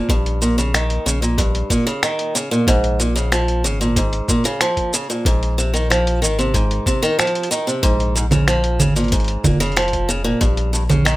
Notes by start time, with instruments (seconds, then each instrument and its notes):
0.09 sub bass A#1, steel-string acoustic guitar G2, kick, closed hi-hat, shaker
0.26 closed hi-hat
0.42 steel-string acoustic guitar A#2, shaker
0.58 steel-string acoustic guitar C#3, closed hi-hat, shaker
0.74 steel-string acoustic guitar D#3, finger snap, closed hi-hat, shaker
0.90 closed hi-hat
1.06 sub bass A#1, steel-string acoustic guitar C#3, shaker
1.22 steel-string acoustic guitar A#2, closed hi-hat, shaker
1.38 steel-string acoustic guitar G2, kick, closed hi-hat, shaker
1.55 closed hi-hat
1.70 steel-string acoustic guitar A#2, kick, shaker
1.87 steel-string acoustic guitar C#3, closed hi-hat, shaker
2.03 steel-string acoustic guitar D#3, finger snap, closed hi-hat, shaker
2.19 closed hi-hat
2.35 steel-string acoustic guitar C#3, shaker
2.51 steel-string acoustic guitar A#2, shaker
2.67 sub bass A#1, steel-string acoustic guitar G#2, kick, closed hi-hat, shaker
2.84 closed hi-hat
3.00 steel-string acoustic guitar A#2, shaker
3.16 steel-string acoustic guitar C#3, closed hi-hat, shaker
3.32 steel-string acoustic guitar F3, finger snap, closed hi-hat, shaker
3.48 closed hi-hat
3.64 sub bass G#1, steel-string acoustic guitar C#3, shaker
3.81 steel-string acoustic guitar A#2, closed hi-hat, shaker
3.96 steel-string acoustic guitar G#2, kick, closed hi-hat, shaker
4.13 closed hi-hat
4.28 steel-string acoustic guitar A#2, kick, shaker
4.44 steel-string acoustic guitar C#3, closed hi-hat, shaker
4.61 steel-string acoustic guitar F3, finger snap, closed hi-hat, shaker
4.77 kick, closed hi-hat
4.94 steel-string acoustic guitar C#3, shaker
5.10 steel-string acoustic guitar A#2, shaker
5.25 sub bass A#1, steel-string acoustic guitar G#2, kick, closed hi-hat, shaker
5.43 closed hi-hat
5.58 steel-string acoustic guitar C3, shaker
5.74 steel-string acoustic guitar D#3, closed hi-hat, shaker
5.90 steel-string acoustic guitar F3, finger snap, closed hi-hat, shaker
6.07 closed hi-hat
6.22 sub bass G#1, steel-string acoustic guitar D#3, shaker
6.39 steel-string acoustic guitar C3, closed hi-hat, shaker
6.54 steel-string acoustic guitar G#2, kick, closed hi-hat, shaker
6.71 closed hi-hat
6.86 steel-string acoustic guitar C3, kick, shaker
7.03 steel-string acoustic guitar D#3, closed hi-hat, shaker
7.19 steel-string acoustic guitar F3, finger snap, closed hi-hat, shaker
7.27 closed hi-hat
7.35 closed hi-hat
7.43 closed hi-hat
7.51 steel-string acoustic guitar D#3, shaker
7.67 steel-string acoustic guitar C3, shaker
7.83 sub bass A#1, steel-string acoustic guitar G#2, kick, closed hi-hat, shaker
8.00 closed hi-hat
8.16 steel-string acoustic guitar G#2, shaker
8.31 steel-string acoustic guitar C#3, closed hi-hat, low conga, shaker
8.48 steel-string acoustic guitar F3, finger snap, closed hi-hat, shaker
8.64 closed hi-hat
8.79 sub bass G#1, steel-string acoustic guitar C#3, low conga, shaker
8.96 steel-string acoustic guitar A#2, closed hi-hat, shaker
9.00 closed hi-hat
9.04 closed hi-hat
9.08 closed hi-hat
9.12 steel-string acoustic guitar G#2, kick, closed hi-hat, shaker
9.16 closed hi-hat
9.20 closed hi-hat
9.24 closed hi-hat
9.28 closed hi-hat
9.44 sub bass F1, steel-string acoustic guitar A#2, kick, low conga, shaker
9.60 steel-string acoustic guitar C#3, closed hi-hat, shaker
9.66 closed hi-hat
9.72 closed hi-hat
9.77 steel-string acoustic guitar F3, finger snap, closed hi-hat
9.82 closed hi-hat
9.88 closed hi-hat
9.93 kick, closed hi-hat
10.09 steel-string acoustic guitar C#3, shaker
10.24 steel-string acoustic guitar A#2
10.41 sub bass A#1, steel-string acoustic guitar G2, kick, closed hi-hat, shaker
10.57 closed hi-hat
10.73 steel-string acoustic guitar G2, shaker
10.89 steel-string acoustic guitar C#3, closed hi-hat, low conga, shaker
11.05 steel-string acoustic guitar D#3, finger snap, closed hi-hat, shaker